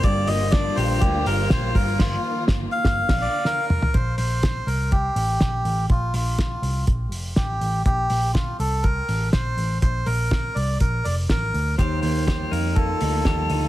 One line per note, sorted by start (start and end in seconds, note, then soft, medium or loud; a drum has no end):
0.00 0.24 G1 loud
0.00 1.74 G2 medium
0.00 1.73 D3 medium
0.00 2.92 G3 medium
0.00 0.28 A#3 medium
0.00 1.71 A#3 medium
0.00 0.77 G4 medium
0.00 0.29 D5 loud
0.00 kick loud
0.00 hi-hat pedal medium
0.00 ride medium
0.04 3.91 F3 medium
0.04 3.91 F4 medium
0.27 0.69 G1 loud
0.27 1.02 A#3 medium
0.27 0.53 D#5 loud
0.27 open hi-hat medium
0.51 1.80 D4 medium
0.51 0.77 D5 loud
0.51 kick loud
0.51 snare loud
0.51 ride medium
0.75 0.98 A#1 medium
0.75 1.26 G4 medium
0.75 1.01 C5 loud
0.75 open hi-hat medium
1.00 1.22 D2 loud
1.00 1.51 A#3 medium
1.00 1.26 G4 medium
1.00 kick loud
1.00 hi-hat pedal medium
1.00 ride medium
1.26 1.47 G1 medium
1.26 1.80 G4 medium
1.26 1.49 A#4 medium
1.26 open hi-hat medium
1.50 1.71 A#1 medium
1.50 2.50 A#3 medium
1.50 1.76 C5 loud
1.50 kick loud
1.50 snare loud
1.50 ride medium
1.75 1.96 G1 medium
1.75 2.00 G2 medium
1.75 2.96 D#3 medium
1.75 3.93 A#3 medium
1.75 2.00 A#4 medium
1.75 kick loud
1.75 open hi-hat medium
1.99 2.16 G1 loud
1.99 2.45 F4 medium
1.99 kick loud
1.99 snare loud
1.99 crash medium
2.48 2.65 G1 loud
2.48 kick loud
2.48 snare loud
2.72 3.66 F5 loud
2.85 3.01 G1 loud
2.85 kick loud
2.85 snare loud
2.98 3.94 D3 medium
3.09 3.26 A#1 loud
3.09 kick loud
3.09 snare loud
3.09 crash medium
3.21 3.46 D5 loud
3.45 3.96 A#4 loud
3.45 snare medium
3.70 mid tom medium
3.82 floor tom medium
3.94 4.15 A#1 medium
3.94 4.16 C5 medium
3.94 kick loud
3.94 closed hi-hat medium
4.17 4.60 A#1 medium
4.17 4.68 C5 medium
4.17 open hi-hat medium
4.43 kick loud
4.43 snare loud
4.43 closed hi-hat medium
4.67 5.09 C2 medium
4.67 4.92 A#4 medium
4.67 open hi-hat medium
4.92 5.86 G4 medium
4.92 kick medium
4.92 closed hi-hat medium
5.16 5.37 A1 medium
5.16 open hi-hat medium
5.41 5.62 A#1 medium
5.41 kick medium
5.41 snare loud
5.41 closed hi-hat medium
5.65 5.86 A1 medium
5.65 open hi-hat medium
5.90 6.11 A#1 medium
5.90 6.14 F4 medium
5.90 kick loud
5.90 closed hi-hat medium
6.14 6.56 A#1 medium
6.14 6.39 F4 medium
6.14 open hi-hat medium
6.39 6.85 F4 medium
6.39 kick loud
6.39 snare loud
6.39 closed hi-hat medium
6.62 6.84 C2 medium
6.62 open hi-hat medium
6.87 7.12 A#1 medium
6.87 kick loud
6.87 closed hi-hat medium
7.12 7.33 F1 medium
7.12 open hi-hat medium
7.36 7.58 A1 medium
7.36 7.82 G4 medium
7.36 kick medium
7.36 snare medium
7.36 closed hi-hat medium
7.61 7.82 A1 medium
7.61 open hi-hat medium
7.85 8.07 A#1 loud
7.85 8.31 G4 medium
7.85 kick loud
7.85 closed hi-hat medium
8.10 8.52 A#1 medium
8.10 open hi-hat medium
8.34 8.57 F4 medium
8.34 kick loud
8.34 snare loud
8.34 closed hi-hat medium
8.59 9.01 C2 medium
8.59 8.85 A4 medium
8.59 open hi-hat medium
8.83 9.29 A#4 medium
8.83 kick loud
8.83 closed hi-hat medium
9.09 9.29 A1 medium
9.09 open hi-hat medium
9.32 9.54 A#1 medium
9.32 9.78 C5 medium
9.32 kick medium
9.32 snare medium
9.32 closed hi-hat medium
9.57 9.78 A1 medium
9.57 open hi-hat medium
9.81 10.03 A#1 medium
9.81 10.07 C5 medium
9.81 kick loud
9.81 closed hi-hat medium
10.06 10.48 A#1 medium
10.06 10.57 A#4 medium
10.06 open hi-hat medium
10.31 kick loud
10.31 snare loud
10.31 closed hi-hat medium
10.55 10.77 C2 medium
10.55 10.78 D5 medium
10.55 open hi-hat medium
10.80 11.01 A#1 medium
10.80 11.05 A#4 medium
10.80 kick medium
10.80 closed hi-hat medium
11.04 11.26 F1 medium
11.04 11.15 D5 medium
11.04 open hi-hat medium
11.29 11.50 A1 medium
11.29 11.75 A#4 medium
11.29 kick medium
11.29 snare loud
11.29 closed hi-hat medium
11.54 11.75 D2 medium
11.54 open hi-hat soft
11.77 11.99 D#2 medium
11.77 13.68 D#3 medium
11.77 13.68 F3 medium
11.77 13.68 G3 medium
11.77 13.68 A#3 medium
11.77 13.68 F4 medium
11.77 12.26 G4 medium
11.77 12.00 C5 loud
11.77 kick loud
11.77 closed hi-hat medium
12.02 12.45 D#2 medium
12.02 12.75 A#3 medium
12.02 12.25 C5 medium
12.02 open hi-hat medium
12.26 13.24 G4 medium
12.26 12.52 C5 medium
12.26 kick loud
12.26 snare loud
12.26 closed hi-hat medium
12.51 12.93 F2 medium
12.51 12.99 D#4 medium
12.51 12.77 A#4 medium
12.51 open hi-hat medium
12.75 13.68 A#3 medium
12.75 13.68 A4 medium
12.75 kick loud
12.75 closed hi-hat medium
13.01 13.22 D2 medium
13.01 13.49 D#4 medium
13.01 open hi-hat medium
13.25 13.46 D#2 medium
13.25 13.68 G4 medium
13.25 kick medium
13.25 snare medium
13.25 closed hi-hat medium
13.50 13.68 D2 medium
13.50 13.68 D#4 medium
13.50 open hi-hat medium